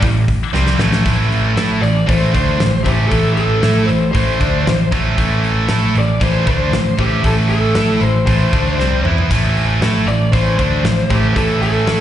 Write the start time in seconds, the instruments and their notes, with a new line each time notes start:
0.02 picked electric bass A1, distorted electric guitar A2 E3, kick, open hi-hat
0.28 kick, open hi-hat
0.53 picked electric bass C2, distorted electric guitar C3 G3 C4, snare
0.66 snare
0.79 picked electric bass A1, distorted electric guitar A2 E3 A3, snare
0.93 snare
1.04 picked electric bass A1, distorted electric guitar A2 E3 A3, kick, open hi-hat
1.32 open hi-hat
1.57 picked electric bass A2, distorted electric guitar A3 E4 A4, snare, open hi-hat
1.81 picked electric bass A1, distorted electric guitar A2 E3, lead electric guitar D5, open hi-hat
2.07 picked electric bass A1, distorted electric guitar A2 E3 A3, lead electric guitar C5, kick, open hi-hat
2.32 picked electric bass D2, distorted electric guitar D3 A3 D4, lead electric guitar C5, kick, open hi-hat
2.58 picked electric bass A1, distorted electric guitar A2 E3, snare, open hi-hat
2.83 picked electric bass A1, distorted electric guitar A2 E3 A3, lead electric guitar G4, kick, open hi-hat
3.08 picked electric bass A1, distorted electric guitar A2 E3, lead electric guitar A4, kick, open hi-hat
3.12 distorted electric guitar A3
3.34 lead electric guitar A4, open hi-hat
3.63 picked electric bass A2, distorted electric guitar A3 E4 A4, snare, open hi-hat
3.86 picked electric bass A1, distorted electric guitar E3, lead electric guitar C5, open hi-hat
3.90 distorted electric guitar A2
4.12 picked electric bass A1, distorted electric guitar A2 E3, lead electric guitar C5, kick, open hi-hat
4.16 distorted electric guitar A3
4.40 picked electric bass D2, distorted electric guitar D3 A3 D4, kick, open hi-hat
4.66 picked electric bass A1, distorted electric guitar A2 E3, snare, open hi-hat
4.92 picked electric bass A1, distorted electric guitar A2 E3 A3, kick, open hi-hat
5.18 picked electric bass A1, distorted electric guitar A2 E3 A3, kick, open hi-hat
5.44 open hi-hat
5.69 picked electric bass A2, distorted electric guitar A3 E4 A4, snare, open hi-hat
5.95 picked electric bass A1, distorted electric guitar A2 E3, lead electric guitar D5, open hi-hat
6.21 picked electric bass A1, distorted electric guitar A2 E3 A3, lead electric guitar C5, kick, open hi-hat
6.47 picked electric bass D2, distorted electric guitar D3 A3 D4, lead electric guitar C5, kick, open hi-hat
6.72 picked electric bass A1, distorted electric guitar A2 E3, snare, open hi-hat
6.98 picked electric bass A1, distorted electric guitar A2 E3 A3, lead electric guitar G4, kick, open hi-hat
7.24 picked electric bass A1, distorted electric guitar A2 E3 A3, lead electric guitar A4, kick, open hi-hat
7.49 lead electric guitar A4, open hi-hat
7.75 picked electric bass A2, distorted electric guitar A3 E4 A4, snare, open hi-hat
8.01 picked electric bass A1, distorted electric guitar A2 E3, lead electric guitar C5, open hi-hat
8.26 picked electric bass A1, distorted electric guitar A2 E3 A3, lead electric guitar C5, kick, open hi-hat
8.52 picked electric bass D2, distorted electric guitar D3 A3 D4, kick, open hi-hat
8.78 picked electric bass C2, distorted electric guitar C3 G3 C4, snare
9.04 picked electric bass E2, distorted electric guitar E3 B3 E4, mid tom
9.18 floor tom
9.31 picked electric bass A1, distorted electric guitar A2 E3 A3, kick, open hi-hat, splash
9.57 open hi-hat
9.82 picked electric bass A2, distorted electric guitar A3 E4 A4, snare, open hi-hat
10.06 picked electric bass A1, distorted electric guitar A2 E3, lead electric guitar D5, open hi-hat
10.32 picked electric bass A1, distorted electric guitar A2 E3 A3, lead electric guitar C5, kick, open hi-hat
10.58 picked electric bass D2, distorted electric guitar D3 A3 D4, lead electric guitar C5, kick, open hi-hat
10.84 picked electric bass A1, distorted electric guitar A2 E3, snare, open hi-hat
10.98 snare
11.10 picked electric bass A1, distorted electric guitar A2 E3 A3, lead electric guitar G4, kick, open hi-hat
11.35 picked electric bass A1, distorted electric guitar A2 E3 A3, lead electric guitar A4, kick, open hi-hat
11.62 lead electric guitar A4, open hi-hat
11.87 picked electric bass A2, distorted electric guitar A3 E4 A4, snare, open hi-hat